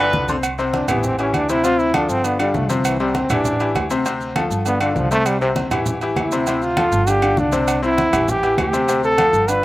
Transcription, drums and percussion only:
0.13 high conga, maracas
0.28 high conga, maracas
0.43 high conga, low agogo, claves, maracas
0.58 high conga, maracas
0.73 high conga, low agogo, maracas
0.88 high conga, low conga, low agogo, claves, maracas
1.03 high conga, low conga, maracas
1.18 high conga, low agogo, maracas
1.34 high conga, low agogo, claves, maracas
1.49 high conga, maracas
1.64 high conga, low agogo, maracas
1.79 high conga, maracas
1.94 high conga, low agogo, claves, maracas
2.09 maracas
2.24 high conga, low agogo, maracas
2.39 high conga, low agogo, claves, maracas
2.54 high conga, low timbale, maracas
2.69 high conga, maracas
2.85 high conga, low agogo, claves, maracas
2.99 high conga, maracas
3.15 high conga, low agogo, maracas
3.30 high conga, low conga, low agogo, claves, maracas
3.45 high conga, low conga, maracas
3.60 high conga, low agogo, maracas
3.75 high conga, low timbale, low agogo, claves, maracas
3.90 high conga, maracas
4.05 high conga, low agogo, maracas
4.21 high conga, maracas
4.36 high conga, low agogo, claves, maracas
4.51 maracas
4.66 high conga, low agogo, maracas
4.81 high conga, low agogo, claves, maracas
4.96 high conga, low timbale, maracas
5.11 maracas
5.26 high conga, low agogo, claves, maracas
5.41 high conga, maracas
5.56 high conga, low agogo, maracas
5.71 high conga, low conga, low agogo, claves, maracas
5.86 high conga, low conga, maracas
6.01 high conga, low agogo, maracas
6.16 high conga, low timbale, low agogo, claves, maracas
6.32 high conga, maracas
6.47 high conga, low agogo, maracas
6.62 high conga, maracas
6.77 high conga, low agogo, claves, maracas
6.92 maracas
7.07 high conga, low agogo, maracas
7.22 high conga, low agogo, claves, maracas
7.37 high conga, maracas
7.52 high conga, maracas
7.68 high conga, low agogo, claves, maracas
7.83 high conga, maracas
7.98 high conga, low agogo, maracas
8.13 high conga, low conga, low agogo, claves, maracas
8.28 high conga, low conga, maracas
8.43 high conga, low agogo, maracas
8.58 high conga, low timbale, low agogo, claves, maracas
8.73 high conga, maracas
8.88 high conga, low agogo, maracas
9.03 high conga, maracas
9.18 high conga, low agogo, claves, maracas
9.33 maracas
9.48 high conga, low agogo, maracas

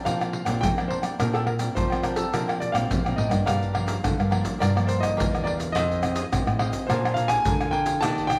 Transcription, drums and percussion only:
0.06 pandeiro, tamborim, shaker, surdo
0.21 pandeiro, tamborim, shaker
0.33 pandeiro
0.46 pandeiro, tamborim, shaker, surdo
0.63 pandeiro, shaker, surdo
0.78 pandeiro, tamborim, shaker
0.90 pandeiro
1.03 pandeiro, tamborim, shaker, surdo
1.20 pandeiro, tamborim, shaker, surdo
1.35 pandeiro, tamborim, shaker
1.47 pandeiro, tamborim
1.59 pandeiro, shaker
1.77 pandeiro, shaker, surdo
1.92 pandeiro, tamborim, shaker, surdo
2.03 pandeiro, tamborim, shaker
2.16 pandeiro, shaker, surdo
2.34 pandeiro, tamborim, shaker, surdo
2.49 pandeiro, tamborim, shaker
2.62 pandeiro, shaker
2.75 pandeiro, tamborim, shaker, surdo
2.91 pandeiro, shaker, surdo
3.06 pandeiro, tamborim, shaker
3.18 pandeiro
3.31 pandeiro, tamborim, shaker, surdo
3.47 pandeiro, tamborim, shaker, surdo
3.63 pandeiro, shaker, surdo
3.75 pandeiro, tamborim, surdo
3.88 pandeiro, shaker
4.04 pandeiro, tamborim, shaker, surdo
4.20 pandeiro, tamborim, shaker
4.32 pandeiro, tamborim
4.45 pandeiro, shaker, surdo
4.62 pandeiro, tamborim, shaker, surdo
4.77 pandeiro, tamborim, shaker
4.89 pandeiro, shaker
5.03 pandeiro, tamborim, shaker, surdo
5.20 pandeiro, shaker, surdo
5.35 pandeiro, tamborim, shaker
5.47 pandeiro
5.60 pandeiro, shaker, surdo
5.76 pandeiro, tamborim, shaker, surdo
5.91 pandeiro, shaker, surdo
6.03 pandeiro, tamborim, shaker, surdo
6.16 pandeiro, shaker
6.33 pandeiro, tamborim, shaker, surdo
6.47 pandeiro, tamborim, shaker
6.59 pandeiro, tamborim
6.73 pandeiro, shaker, surdo
6.90 pandeiro, tamborim, shaker, surdo
7.05 pandeiro, tamborim, shaker
7.16 pandeiro, shaker
7.29 pandeiro, tamborim, shaker, surdo
7.45 pandeiro, shaker, surdo
7.61 pandeiro, tamborim, shaker
7.73 pandeiro
7.86 pandeiro, shaker, surdo
8.02 pandeiro, tamborim, shaker, surdo
8.18 pandeiro, shaker, surdo
8.30 pandeiro, tamborim, shaker, surdo

